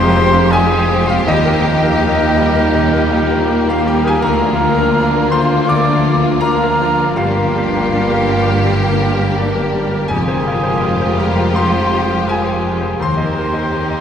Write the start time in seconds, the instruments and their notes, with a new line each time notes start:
Already playing: double bass section F1, cello section F2, grand piano F2 C3 C4 F4 C5 F5 G#5 A#5 C6, harp F2 F4 F5, viola section G#3, french horn section C4 F4, violin section F4 G4, clarinet C5, flute C6
0.02 harp C3
0.15 violin section C4, grand piano C5
0.32 violin section G#3, grand piano F5
0.51 violin section G3, grand piano F4 G#5, clarinet G#4, harp F5, flute G#5
0.72 violin section G#3, grand piano F5
0.92 violin section C4, grand piano C4
1.02 harp F5
1.07 clarinet F4, violin section F4, flute F5, grand piano F5
1.26 cello section D#2, double bass section D#2, grand piano D#2 D#5, harp D#3, violin section G3, french horn section A#3, viola section A#3, clarinet D#4, flute D#5
1.45 violin section A#3, grand piano A#4
1.51 harp D#4
1.61 violin section D#4, grand piano G4
1.76 harp G4
1.82 violin section G4, grand piano A#4
2.00 violin section D#4, grand piano G4, harp A#4
2.19 violin section A#3, grand piano A#4
2.24 harp G5
2.37 grand piano G3, violin section G3
2.50 harp A#4
2.55 violin section A#3, grand piano A#4
2.74 grand piano A#2, harp D#3, violin section D#4
2.93 violin section G4, grand piano A#4
3.01 harp D#4
3.12 violin section D#4, grand piano G4
3.24 harp G4
3.30 violin section A#3, grand piano A#4
3.48 violin section G3, grand piano G4, harp A#4
3.67 violin section A#3, clarinet F4, grand piano A#4 F5, flute F5
3.74 harp G5
3.85 grand piano G3 G5, violin section D#4, clarinet G4, flute G5
3.99 harp A#4
4.04 violin section G4, clarinet G#4, grand piano A#4 G#5, flute G#5
4.22 cello section D2, grand piano D2 A#5, double bass section D2, harp D3, violin section A#3 F4, french horn section F4, clarinet A#4, flute A#5
4.40 violin section D4, grand piano A#4
4.48 harp F3
4.60 violin section A#3, grand piano F4
4.73 harp A#4
4.77 violin section D4, grand piano A#4
4.96 violin section A#3, grand piano D4, harp F4
5.15 violin section D4, grand piano A#4
5.21 harp A#5
5.30 grand piano F3 C6, clarinet C5, flute C6
5.35 violin section A#3
5.45 harp F4
5.52 violin section D4, grand piano A#4
5.67 grand piano D2 D6, harp D3, clarinet D5, flute D6
5.72 violin section A#3
5.89 grand piano D4, violin section D4
5.95 harp F3
6.08 violin section A#3, grand piano F4
6.19 harp A#4
6.27 violin section D4, grand piano A#4
6.41 harp F4, clarinet A#4, grand piano A#5, flute A#5
6.45 violin section A#3, grand piano D4
6.64 violin section D4, grand piano A#4
6.68 harp A#5
6.81 grand piano F3, violin section A#3
6.94 harp F4
6.99 violin section D4, grand piano A#4
7.16 double bass section G1, grand piano G2 F5, cello section G2, harp G2, viola section A#3, french horn section A#3 A#4, clarinet F4, violin section G4, flute F5
7.21 violin section G3
7.36 violin section A#3, grand piano A#4
7.42 harp D3
7.56 violin section D4, grand piano G4
7.66 harp D4
7.74 violin section A#3, grand piano A#4
7.91 violin section G3, grand piano D4, harp A#4
8.10 violin section A#3, grand piano A#4
8.16 harp D5
8.28 grand piano G3, violin section D4
8.44 violin section A#3, grand piano A#4
8.63 harp G2, grand piano D3, violin section G3
8.81 violin section A#3, grand piano A#4
8.89 harp D3
9.00 violin section D4, grand piano G4
9.14 harp D4
9.18 violin section A#3, grand piano A#4
9.37 violin section G3, grand piano D4, harp A#4
9.55 violin section A#3, grand piano A#4
9.63 harp D5
9.73 grand piano G3, violin section D4
9.87 violin section A#3, harp A#4
9.91 grand piano A#4
10.08 double bass section F1, grand piano F2 G#5, cello section F2, timpani F2, harp F2, viola section G#3, french horn section C4, violin section F4 G4, clarinet G#4, flute G#5
10.28 grand piano C5
10.35 harp C3
10.47 grand piano F4
10.60 harp F4, grand piano C5
10.83 grand piano F4, harp C5
11.01 grand piano C5
11.09 harp F5
11.19 grand piano G3 A#5, clarinet A#4, flute A#5
11.38 grand piano C5
11.55 harp F2, grand piano C3 C6, clarinet C5, flute C6
11.74 grand piano C5
11.82 harp C3
11.90 grand piano G4
12.06 harp F4, grand piano C5
12.27 grand piano F4 G#5, clarinet G#4, flute G#5
12.44 grand piano C5
12.54 harp F5
12.62 grand piano G#3
12.77 harp C5
12.81 grand piano C5
13.00 grand piano D#2 C6, cello section D#2, double bass section D#2, harp D#3, french horn section A#3 G4, viola section A#3, violin section G4 A#4, clarinet C5, flute C6
13.17 grand piano D#5
13.24 harp D#4
13.38 grand piano A#4
13.48 harp G4
13.54 grand piano D#5
13.71 grand piano G4, harp D#5
13.91 grand piano D#5
13.96 harp G5